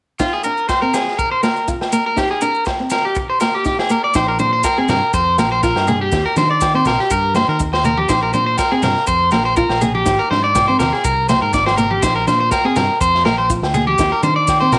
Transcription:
0.19 D#4 F4, kick, snare, low agogo, maracas
0.33 G#4
0.44 D4 A#4, maracas
0.57 maracas
0.69 C5, kick, snare, low agogo, maracas
0.82 C4 A#4
0.94 G#4, snare, low agogo, maracas
1.08 snare
1.19 A#4, kick, maracas
1.31 C5
1.43 A#3 A#4, snare, low agogo, maracas
1.56 maracas
1.68 F4, kick, maracas
1.81 snare, low agogo
1.92 A#3 A#4, maracas
2.06 A#4
2.16 D#4 G4, kick, snare, low agogo, maracas
2.31 G#4
2.41 D4 A#4, maracas
2.54 maracas
2.65 muted clean electric guitar stroke, kick, snare, low agogo, maracas
2.80 C4
2.90 A#4, snare, low agogo, maracas
3.05 G4
3.15 muted clean electric guitar stroke, kick, maracas
3.30 C5
3.40 A#3 A#4, snare, low agogo, maracas
3.55 G4
3.65 D#4 G4, kick, snare, maracas
3.79 G#4, snare, low agogo
3.89 A#3 A#4, maracas
4.04 D5
4.14 A#1 D#4 C5, kick, snare, low agogo, maracas
4.28 A#4
4.39 A#2 D4 C5, high conga, maracas
4.53 C5
4.63 A#4, kick, snare, low agogo, maracas
4.78 C4 G#4
4.88 G2 A#4, snare, low conga, low agogo, maracas
5.13 F2 C5, kick, maracas
5.38 A#1 A#3 A#4, snare, high conga, low agogo, maracas
5.52 C5
5.63 F4 A#4, kick, snare, maracas
5.75 G2, snare, low agogo
5.87 A#3 G#4, low conga, maracas
6.01 G4
6.12 D#2 D#4, kick, snare, low agogo, maracas
6.26 A#4
6.36 D#3 D4 C5, snare, high conga, maracas
6.51 D5
6.61 kick, snare, low agogo, maracas
6.74 C4 C5
6.85 A#1 A#4, snare, low conga, low agogo, maracas
7.00 G4, snare
7.10 G2 A#4, kick, maracas
7.35 A#3 C5, snare, high conga, low agogo, maracas
7.48 D#3 A#4
7.59 D#2 D#4, kick, maracas
7.73 C5, snare, low agogo
7.84 A#3 A#4, low conga, maracas
7.97 G4, high conga
8.09 A#1 D#4 C5, kick, snare, low agogo, maracas
8.23 A#4
8.33 A#2 D4 C5, high conga, maracas
8.46 C5
8.57 A#4, kick, snare, low agogo, maracas
8.71 C4 G#4
8.82 G2 A#4, snare, low conga, low agogo, maracas
8.96 snare
9.07 F2 C5, kick, maracas
9.31 A#1 A#3 A#4, snare, high conga, low agogo, maracas
9.45 C5
9.56 F4 A#4, kick, maracas
9.69 A#1, snare, low agogo
9.81 A#3 G#4, low conga, maracas
9.95 G4, high conga
10.06 G#1 D#4, kick, snare, low agogo, maracas
10.19 A#4
10.31 G#2 D4 C5, snare, high conga
10.44 D5
10.55 kick, snare, low conga, low agogo, maracas
10.68 C4 C5, high conga
10.79 D#2 A#4, snare, low conga, low agogo, maracas
10.93 G#4, snare
11.04 C2 A#4, kick, maracas
11.29 A#3 C5, snare, high conga, low conga, low agogo, maracas
11.42 G#2 A#4
11.53 G#1 D#4 D5, kick, snare, maracas
11.66 C5, snare, high conga, low agogo
11.77 A#3 A#4, low conga, maracas
11.91 G4, high conga
12.02 A#1 D#4 C5, kick, snare, low agogo, maracas
12.16 A#4
12.27 A#2 D4 C5, snare, high conga, maracas
12.40 C5
12.51 A#4, kick, snare, low agogo, maracas
12.65 C4 G#4
12.76 G2 A#4, snare, low conga, low agogo, maracas
13.01 F2 C5, kick, maracas
13.15 snare
13.25 A#1 A#3 A#4, snare, high conga, low agogo
13.38 C5
13.50 F4, kick, maracas
13.62 D2, snare, low agogo
13.74 A#3 G#4, low conga, maracas
13.87 G4, high conga
13.98 D#2 D#4, kick, snare, low agogo, maracas
14.12 A#4
14.23 D#3 D4 C5, high conga, maracas
14.36 D5
14.47 kick, snare, low agogo, maracas
14.60 C4 C5
14.72 A#1 A#4, snare, low conga, low agogo, maracas

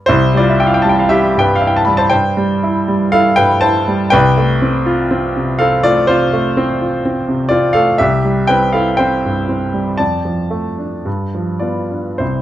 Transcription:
0.06 C2 E4 C5
0.34 G3 D5
0.39 F4
0.50 E5
0.60 E4 G5
0.67 F5
0.74 G5
0.82 G3 A5
0.89 G5
0.99 F5
1.09 E4 G4 E5
1.37 G2 B4 G5
1.56 F5
1.62 E4
1.67 G5
1.76 A5
1.85 G3 B5
1.97 C5 A5
2.10 G2 C5 G5
2.37 G3
2.63 E4
2.88 G3
3.12 E4 A4 F5
3.36 G2 B4 G5
3.61 E4 C5 A5
3.88 G3
4.10 C2 B4 G5
4.38 A3
4.62 C4
4.86 F4
5.11 C4
5.37 C3
5.59 C4 A4 F5
5.83 A3 F4 D5
6.07 C3 F4 C5
6.33 A3
6.57 C4
6.82 F4
7.05 C4
7.29 C3
7.49 C4 F4 D5
7.73 A3 A4 F5
7.98 C2 G4 E5
8.25 G3
8.47 C4 B4 G5
8.73 E4 A4 F5
8.97 C4 C5 G5
9.25 G2
9.49 C4
9.74 G3
9.97 F2 D5 A5
10.25 F3
10.51 A3
10.78 D4
11.05 G2
11.35 F3
11.60 B3 F4 D5
11.91 D4
12.18 C2 C3 E4 C5

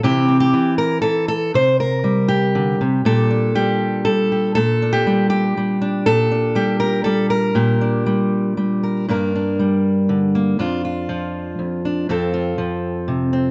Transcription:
0.03 C3 E3 C4 E4 G4
0.28 C4
0.40 G4
0.53 E3
0.78 A#4
1.02 E3 A4
1.28 A4
1.54 C3 C5
1.80 A#4
2.04 G3
2.28 G4
2.55 D3
2.81 C3
3.05 A#2 G3 D4 G4 A4
3.30 D4
3.55 G3 G4
4.05 G3 A4
4.32 G4
4.55 A#2 A4
4.82 D4
4.93 G4
5.07 G3
5.30 G4
5.57 G3
5.82 D4
6.06 A#2 A4
6.31 D4
6.55 G3 G4
6.80 A#4
7.04 G3 A4
7.30 A#4
7.55 A#2 G4
7.81 D4
8.06 G3
8.57 G3
8.83 A#4
9.09 G2 A#3 D4 A#4
9.35 D4
9.59 G3
10.09 D3
10.35 A#3
10.59 F2 D4 F4
10.85 F4
11.09 F3
11.59 F2
11.85 D4
12.09 F2 C4 F4 A4
12.34 F4
12.58 F3
13.08 C3
13.33 C4

